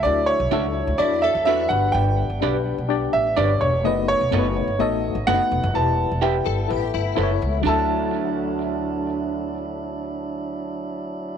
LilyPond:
<<
  \new Staff \with { instrumentName = "Grand piano" } { \time 4/4 \key d \major \tempo 4 = 126 d''8 cis''4. d''8 e''8 e''8 fis''8 | g''2~ g''8 e''8 d''8 cis''8 | dis''8 cis''4. dis''4 fis''4 | a''4 g''2 r4 |
a''1~ | a''1 | }
  \new Staff \with { instrumentName = "Clean electric guitar" } { \time 4/4 \key d \major r4 <d' fis' a' e''>8 r4. <d' fis' a' e''>8 r8 | r4 <d' g' b' d''>8 r4. <d' g' b' d''>8 r8 | r4 <b fis' a' dis''>8 r4. <b fis' a' dis''>8 r8 | r4 <e' g' b' e''>8 r4. <e' a' b' e''>8 r8 |
<d' fis' a' e''>1~ | <d' fis' a' e''>1 | }
  \new Staff \with { instrumentName = "Clean electric guitar" } { \time 4/4 \key d \major r2 e'8 a'8 fis'4 | r1 | r1 | r4. a'8 g'8 e'4. |
r1 | r1 | }
  \new Staff \with { instrumentName = "Reed electric piano" } { \time 4/4 \key d \major <d' e' fis' a' e''>4 <d' e' fis' a' e''>4 <d' e' fis' a' d''>4 <d' e' fis' a' b'>8 <d' g' b'>8~ | <d' g' b'>8 r8 <d' g' b'>4 <d' g' d''>4 <d' g' c'' cis''>4 | <a b dis' fis' b'>4 <a b dis' fis' bes' b'>4 <a b dis' fis' a'>4 <a b d' dis' fis' b'>4 | <e' fis' g' b'>4 <e' g' b'>4 <e' a' b'>4 <e' a' c'' cis''>4 |
<fis d' e' a'>1~ | <fis d' e' a'>1 | }
  \new Staff \with { instrumentName = "Tonewheel organ" } { \time 4/4 \key d \major e'2.~ e'8 r8 | r1 | dis'1 | e'1 |
<fis d' e'>1~ | <fis d' e'>1 | }
  \new Staff \with { instrumentName = "Tonewheel organ" } { \time 4/4 \key d \major << { d'2.~ d'8 b8~ | b1 | b1~ | b1 |
r1 | r1 | } \\ { fis2.~ fis8 g8~ | g1 | a1 | g2 a2 |
r1 | r1 | } >> }
  \new Staff \with { instrumentName = "Upright bass" } { \clef bass \time 4/4 \key d \major d,8. b,,16 cis,8. d,16 e,8. e,8. g,,8 | g,,8. g,,16 b,,8. b,,8. a,,8 g,,8 e,,8 | fis,,8. e,,16 fis,,8. g,,16 a,,8. a,,16 fis,,16 r16 e,,16 fis,,16 | e,,8. e,,8. g,,8 a,,8 g,,8 fis,,8 cis,8 |
d,1~ | d,1 | }
>>